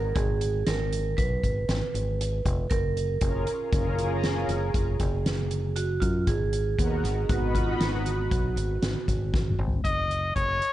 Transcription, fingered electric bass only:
0.00 0.13 G#1 medium
0.16 0.63 G#1 loud
0.67 1.14 G#1 medium
1.18 1.41 B1 medium
1.43 1.67 G#1 medium
1.68 1.80 G#1 medium
1.94 2.41 G#1 medium
2.45 2.69 F1 medium
2.71 3.18 F#1 medium
3.21 3.45 F#1 medium
3.73 4.45 F#1 loud
4.48 4.72 F#1 medium
4.74 4.98 F#1 medium
5.00 5.98 F#1 medium
6.02 6.25 F#2 loud
6.27 6.74 G#1 medium
6.79 7.02 D#2 medium
7.04 7.27 G#1 medium
7.29 7.76 G#1 medium
7.80 8.27 G#1 medium
8.32 8.55 B1 medium
8.56 8.80 G#1 medium
8.82 8.94 G#1 medium
9.08 9.55 G#1 medium
9.59 9.82 G#1 medium
9.84 10.32 F#1 medium
10.36 10.60 F#1 medium

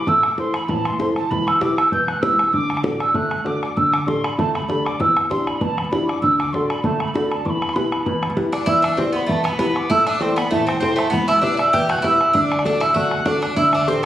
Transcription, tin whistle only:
0.08 0.27 E6 loud
0.25 0.39 D6 loud
0.39 0.57 C6 medium
0.56 0.71 B5 loud
0.70 0.87 A5 medium
0.85 1.00 C6 loud
1.00 1.06 C6 loud
1.17 1.32 A5 loud
1.30 1.49 B5 loud
1.47 1.62 E6 loud
1.61 1.79 D6 medium
1.77 1.91 E6 loud
1.92 2.04 G6 loud
2.04 2.09 G6 medium
2.08 2.23 F#6 loud
2.21 2.54 E6 loud
2.53 2.84 D6 loud
2.84 2.99 D6 loud
3.00 3.16 E6 loud
3.15 3.48 F#6 loud
3.46 3.61 D6 loud
3.62 3.78 D6 medium
3.76 3.94 E6 loud
3.92 4.09 D6 medium
4.08 4.26 C6 medium
4.24 4.38 B5 medium
4.39 4.53 A5 medium
4.55 4.68 B5 medium
4.69 4.87 B5 loud
4.85 5.02 D6 medium
5.01 5.16 E6 loud
5.30 5.48 C6 medium
5.47 5.63 B5 medium
5.62 5.79 A5 medium
5.77 5.91 B5 medium
5.92 6.07 B5 loud
6.07 6.21 D6 medium
6.22 6.37 E6 loud
6.38 6.54 D6 medium
6.53 6.68 C6 medium
6.69 6.82 B5 medium
6.84 7.03 A5 medium
7.01 7.13 B5 medium
7.14 7.33 B5 medium
7.31 7.47 A5 medium
7.45 7.75 B5 loud
7.45 7.50 D6 medium
7.73 8.04 B5 medium
7.73 7.78 C6 medium
8.03 8.08 A5 medium
8.03 8.32 B5 medium
8.54 8.70 D6 loud
8.68 8.86 E6 loud
8.85 9.00 D6 medium
8.99 9.17 C6 medium
9.16 9.32 B5 medium
9.31 9.49 A5 medium
9.48 9.60 B5 medium
9.61 9.78 B5 medium
9.76 9.92 D6 loud
9.91 10.06 E6 loud
10.07 10.23 D6 medium
10.22 10.38 C6 loud
10.37 10.50 B5 loud
10.51 10.66 A5 loud
10.67 10.81 C6 medium
10.83 11.01 C6 loud
10.99 11.15 A5 loud
11.13 11.30 B5 loud
11.28 11.45 E6 loud
11.43 11.59 D6 loud
11.61 11.76 E6 loud
11.74 11.93 G6 loud
11.91 12.07 F#6 loud
12.05 12.36 E6 loud
12.36 12.41 E6 loud
12.40 12.65 D6 loud
12.65 12.84 D6 loud
12.82 12.98 E6 loud
12.96 13.29 F#6 loud
13.27 13.43 D6 loud
13.45 13.60 D6 medium
13.58 13.76 E6 loud
13.74 13.89 D6 medium
13.88 14.05 C6 loud

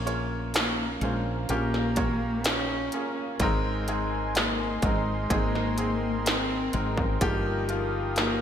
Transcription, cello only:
0.56 1.00 A#3 medium
1.04 1.24 G#3 medium
1.52 2.49 A#3 medium
2.47 3.18 C#4 medium
4.36 4.80 A#3 medium
4.85 5.33 G#3 medium
5.31 6.29 A#3 medium
6.27 6.98 C4 medium
8.19 8.41 A#3 medium

